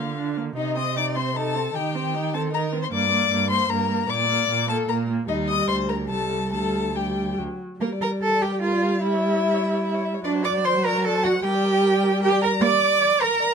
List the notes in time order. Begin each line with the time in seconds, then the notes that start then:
Already playing: D3 F4 F5
0.00 A#3
0.18 D4
0.38 A#3
0.56 C3 D#4 D#5
0.77 C4 D#5 D#6
0.96 D#4 D5 D6
1.16 C4 C5 C6
1.36 D#4 A4 A5
1.55 C4
1.75 D#3 D#4 G4 G5
1.95 C4
2.15 D#4
2.34 C4 A4 A5
2.53 D#4 A#4 A#5
2.73 C4
2.82 C5 C6
2.92 G2 A#3 D5 D6
3.12 A#3
3.31 G2 A#3
3.50 A#3 C5 C6
3.70 G2 A#3 A#4 A#5
3.90 A#3
4.09 A#2 A#3 D5 D6
4.30 A#3
4.49 A#2 A#3
4.69 A#3 A4 A5
4.89 A#2 A#3 A#4 A#5
5.10 A#3
5.28 D#2 G3 D#4 D#5
5.48 D#5 D#6
5.68 D2 C5 C6
5.89 A#4 A#5
6.09 C2 G3 A4 A5
6.52 D2 G3 A4 A5
6.95 G3 G4 G5
7.38 D2 F#3
7.81 G3 A#3 A#4
7.92 D5
8.01 A#4 A#5
8.11 D5
8.22 A4 A#4 A5
8.33 D5
8.42 G4 A#4 G5
8.52 D5
8.62 F4 A#4 F5
8.72 D5
8.82 A#4
8.92 D5
9.02 E4 E5
9.13 C#5
9.23 E5
9.34 C#5
9.44 E5
9.54 C#5
9.63 E5
9.74 C#5
9.84 E5
9.94 C#5
10.05 E5
10.14 C#5
10.24 F#3 D4 D5
10.35 C5
10.44 D5 D6
10.55 C5
10.64 C5 D5 C6
10.75 C5
10.85 A#4 D5 A#5
10.94 C5
11.05 A4 D5 A5
11.14 C5
11.24 F#4 D5 F#5
11.35 C5
11.44 G3 G4 A#4 G5
11.55 D5
11.64 A#4
11.74 D5
11.83 A#4
11.94 D5
12.03 A#4
12.12 D5
12.23 G4 A#4 G5
12.32 D5
12.42 A#4 A#5
12.52 D5
12.62 A#3 D5 D6
13.01 D5
13.21 A#4 A#5
13.40 D5